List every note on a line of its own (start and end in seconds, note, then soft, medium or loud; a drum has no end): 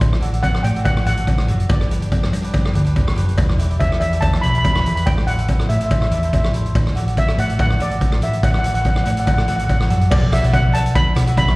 0.01 0.55 A1 medium
0.01 kick loud
0.01 closed hi-hat medium
0.01 cowbell medium
0.13 cross-stick medium
0.21 0.28 D4 medium
0.21 0.29 F#4 medium
0.21 0.29 A4 medium
0.21 closed hi-hat medium
0.32 0.57 D4 medium
0.32 0.58 F#4 medium
0.32 0.58 A4 medium
0.32 closed hi-hat medium
0.43 0.65 F#5 medium
0.43 kick medium
0.43 closed hi-hat medium
0.43 cowbell medium
0.54 cross-stick medium
0.63 1.00 A2 medium
0.63 0.83 G5 medium
0.63 closed hi-hat medium
0.63 cowbell medium
0.74 0.94 D4 medium
0.74 0.94 F#4 medium
0.74 0.95 A4 medium
0.74 closed hi-hat medium
0.85 0.94 F#5 medium
0.85 kick loud
0.85 closed hi-hat medium
0.85 cowbell medium
0.97 cross-stick medium
1.05 1.24 A1 medium
1.05 1.12 D4 medium
1.05 1.13 F#4 medium
1.05 1.13 A4 medium
1.05 1.46 F#5 medium
1.05 closed hi-hat medium
1.16 1.36 D4 medium
1.16 1.36 F#4 medium
1.16 1.37 A4 medium
1.16 closed hi-hat medium
1.27 1.45 A1 medium
1.27 kick medium
1.27 closed hi-hat medium
1.27 cowbell medium
1.38 cross-stick medium
1.47 1.67 F#1 medium
1.47 1.69 D4 medium
1.47 1.70 F#4 medium
1.47 1.70 A4 medium
1.47 closed hi-hat medium
1.60 closed hi-hat medium
1.69 2.23 G1 medium
1.69 2.09 D5 medium
1.69 kick loud
1.69 closed hi-hat medium
1.69 cowbell medium
1.81 cross-stick medium
1.89 1.97 D4 medium
1.89 1.97 G4 medium
1.89 1.98 B4 medium
1.89 closed hi-hat medium
2.00 2.26 D4 medium
2.00 2.27 G4 medium
2.00 2.27 D5 medium
2.00 closed hi-hat medium
2.12 kick medium
2.12 closed hi-hat medium
2.12 cowbell medium
2.23 cross-stick medium
2.33 2.69 G2 medium
2.33 closed hi-hat medium
2.33 cowbell medium
2.42 2.62 D4 medium
2.42 2.62 G4 medium
2.42 2.63 B4 medium
2.42 closed hi-hat medium
2.54 kick medium
2.54 closed hi-hat soft
2.54 cowbell medium
2.65 cross-stick medium
2.73 2.93 D2 medium
2.73 2.81 D4 medium
2.73 2.81 G4 medium
2.73 2.82 B4 medium
2.73 closed hi-hat medium
2.85 3.04 D4 medium
2.85 3.05 G4 medium
2.85 3.05 B4 medium
2.85 closed hi-hat medium
2.96 3.14 G1 medium
2.96 kick medium
2.96 closed hi-hat soft
2.96 cowbell medium
3.08 cross-stick medium
3.16 3.35 F#1 medium
3.16 3.37 D4 medium
3.16 3.38 G4 medium
3.16 3.38 B4 medium
3.16 closed hi-hat medium
3.29 closed hi-hat medium
3.38 3.92 E1 medium
3.38 kick loud
3.38 closed hi-hat medium
3.38 cowbell medium
3.49 cross-stick medium
3.58 3.65 E4 medium
3.58 3.66 G4 medium
3.58 3.66 B4 medium
3.58 closed hi-hat medium
3.69 3.95 E4 medium
3.69 3.95 G4 medium
3.69 3.96 D5 medium
3.69 closed hi-hat medium
3.80 3.99 E5 medium
3.80 kick medium
3.80 closed hi-hat soft
3.80 cowbell medium
3.92 cross-stick medium
4.00 4.37 E2 medium
4.00 4.22 E5 medium
4.00 closed hi-hat medium
4.00 cowbell medium
4.12 4.31 E4 medium
4.12 4.31 G4 medium
4.12 4.32 A4 medium
4.12 closed hi-hat medium
4.21 4.43 A5 loud
4.21 kick medium
4.21 closed hi-hat medium
4.21 cowbell medium
4.33 cross-stick medium
4.41 4.61 B1 medium
4.41 4.50 E4 medium
4.41 4.50 G4 medium
4.41 4.51 B4 medium
4.41 4.49 B5 medium
4.41 closed hi-hat medium
4.50 4.57 B5 medium
4.54 4.73 E4 medium
4.54 4.74 G4 medium
4.54 4.74 A4 medium
4.54 closed hi-hat medium
4.58 4.64 B5 medium
4.64 4.82 E1 medium
4.64 4.72 B5 medium
4.64 kick medium
4.64 closed hi-hat medium
4.64 cowbell medium
4.73 4.79 B5 medium
4.73 cross-stick medium
4.80 4.87 B5 medium
4.85 5.03 E2 medium
4.85 5.06 E4 medium
4.85 5.07 G4 medium
4.85 5.07 B4 medium
4.85 4.94 B5 medium
4.85 closed hi-hat medium
4.95 5.02 B5 medium
4.95 closed hi-hat medium
5.06 5.60 A1 medium
5.06 5.16 G5 medium
5.06 kick loud
5.06 closed hi-hat medium
5.06 cowbell medium
5.18 cross-stick medium
5.27 5.34 E4 medium
5.27 5.34 A4 medium
5.27 5.35 C5 medium
5.27 5.66 F#5 medium
5.27 closed hi-hat medium
5.38 5.63 E4 medium
5.38 5.64 A4 medium
5.38 5.64 B4 medium
5.38 closed hi-hat medium
5.48 kick medium
5.48 closed hi-hat medium
5.48 cowbell medium
5.59 cross-stick medium
5.69 6.05 A2 medium
5.69 5.76 E5 medium
5.69 closed hi-hat medium
5.77 5.99 E4 medium
5.77 6.00 A4 medium
5.77 5.84 E5 soft
5.77 closed hi-hat medium
5.82 6.00 C5 medium
5.82 5.91 E5 medium
5.90 5.99 E5 soft
5.90 kick medium
5.90 closed hi-hat medium
5.90 cowbell medium
6.00 6.06 E5 soft
6.00 cross-stick medium
6.07 6.18 E4 medium
6.07 6.13 E5 soft
6.11 6.30 E2 medium
6.11 6.19 A4 medium
6.11 6.19 D5 medium
6.11 6.21 E5 soft
6.11 closed hi-hat medium
6.22 6.42 E4 medium
6.22 6.42 A4 medium
6.22 6.42 C5 medium
6.22 6.28 E5 soft
6.22 closed hi-hat medium
6.29 6.51 A1 medium
6.29 6.35 E5 soft
6.29 closed hi-hat medium
6.33 6.44 E5 medium
6.33 kick medium
6.33 cowbell medium
6.44 cross-stick medium
6.53 6.72 A1 medium
6.53 6.75 E4 medium
6.53 6.75 A4 medium
6.53 6.76 C5 medium
6.53 closed hi-hat medium
6.66 closed hi-hat medium
6.75 7.29 A1 medium
6.75 kick loud
6.75 closed hi-hat medium
6.75 cowbell medium
6.87 cross-stick medium
6.95 7.02 F#4 medium
6.95 7.03 A4 medium
6.95 7.03 D5 medium
6.95 closed hi-hat medium
7.06 7.32 F#4 medium
7.06 7.32 A4 medium
7.06 7.33 D5 medium
7.06 closed hi-hat medium
7.17 7.39 E5 medium
7.17 kick medium
7.17 closed hi-hat medium
7.17 cowbell medium
7.28 cross-stick medium
7.38 7.74 A2 medium
7.38 7.59 F#5 medium
7.38 closed hi-hat medium
7.38 cowbell medium
7.48 7.67 F#4 medium
7.48 7.68 A4 medium
7.48 7.68 D5 medium
7.48 closed hi-hat medium
7.59 7.81 F#5 loud
7.59 kick loud
7.59 closed hi-hat medium
7.59 cowbell medium
7.70 cross-stick medium
7.79 7.98 A1 medium
7.79 7.86 F#4 medium
7.79 7.87 A4 medium
7.79 7.87 D5 medium
7.79 8.24 D5 medium
7.79 closed hi-hat medium
7.90 8.10 F#4 medium
7.90 8.10 A4 medium
7.90 8.10 D5 medium
7.90 closed hi-hat medium
8.01 8.19 A1 medium
8.01 kick medium
8.01 closed hi-hat medium
8.01 cowbell medium
8.12 cross-stick medium
8.21 8.40 A1 medium
8.21 8.47 F#4 medium
8.21 8.48 A4 medium
8.21 8.48 D5 medium
8.21 8.42 E5 medium
8.21 closed hi-hat medium
8.33 closed hi-hat medium
8.43 8.97 A1 medium
8.43 8.50 F#5 medium
8.43 kick loud
8.43 closed hi-hat medium
8.43 cowbell medium
8.51 8.57 F#5 medium
8.51 cross-stick medium
8.59 8.65 F#5 medium
8.63 8.71 F#4 medium
8.63 8.71 A4 medium
8.63 8.72 D5 medium
8.63 8.73 F#5 medium
8.63 closed hi-hat medium
8.74 9.00 F#4 medium
8.74 9.00 A4 medium
8.74 9.01 B4 medium
8.74 8.80 F#5 medium
8.74 closed hi-hat medium
8.82 8.88 F#5 medium
8.82 kick medium
8.82 closed hi-hat medium
8.86 8.96 F#5 medium
8.86 cowbell medium
8.96 9.03 F#5 soft
8.96 cross-stick medium
9.04 9.42 A2 medium
9.04 9.10 F#5 medium
9.04 closed hi-hat medium
9.04 cowbell medium
9.12 9.19 F#5 soft
9.16 9.36 F#4 medium
9.16 9.36 A4 medium
9.16 9.37 D5 medium
9.16 9.25 F#5 medium
9.16 closed hi-hat medium
9.26 9.33 F#5 medium
9.26 kick medium
9.26 closed hi-hat medium
9.26 cowbell medium
9.34 9.40 F#5 medium
9.38 9.47 F#5 soft
9.38 cross-stick medium
9.48 9.66 A1 medium
9.48 9.55 F#4 medium
9.48 9.55 A4 medium
9.48 9.56 D5 medium
9.48 9.55 F#5 medium
9.48 closed hi-hat medium
9.56 9.78 F#4 medium
9.56 9.79 A4 medium
9.56 9.63 F#5 medium
9.56 closed hi-hat medium
9.61 9.79 D5 medium
9.61 9.70 F#5 medium
9.69 9.87 A1 medium
9.69 9.78 F#5 medium
9.69 kick medium
9.69 closed hi-hat medium
9.69 cowbell medium
9.80 cross-stick medium
9.89 10.08 F#2 medium
9.89 10.11 F#4 medium
9.89 10.11 A4 medium
9.89 10.12 D5 medium
9.89 closed hi-hat medium
10.01 closed hi-hat medium
10.11 10.39 B1 medium
10.11 10.33 D5 medium
10.11 kick loud
10.11 crash loud
10.11 cowbell loud
10.31 10.39 F#4 medium
10.31 10.39 B4 medium
10.31 10.40 D5 medium
10.31 10.54 E5 medium
10.31 cross-stick medium
10.31 closed hi-hat medium
10.42 11.05 B1 medium
10.42 10.62 F#4 medium
10.42 10.62 B4 medium
10.42 10.63 D5 medium
10.42 closed hi-hat medium
10.54 10.75 F#5 loud
10.54 kick medium
10.54 closed hi-hat medium
10.54 cowbell medium
10.72 10.99 F#4 medium
10.72 11.00 B4 medium
10.72 11.00 E5 medium
10.72 10.94 A5 loud
10.72 closed hi-hat medium
10.72 cowbell medium
10.86 closed hi-hat medium
10.95 11.35 B5 loud
10.95 kick loud
10.95 closed hi-hat medium
10.95 cowbell medium
11.15 11.56 B1 medium
11.15 11.22 F#4 medium
11.15 11.23 B4 medium
11.15 11.24 D5 medium
11.15 cross-stick medium
11.15 closed hi-hat medium
11.26 11.56 F#4 medium
11.26 11.56 B4 medium
11.26 11.56 E5 medium
11.26 closed hi-hat medium
11.37 11.56 B5 medium
11.37 kick medium
11.37 closed hi-hat medium
11.37 cowbell medium
11.48 cross-stick medium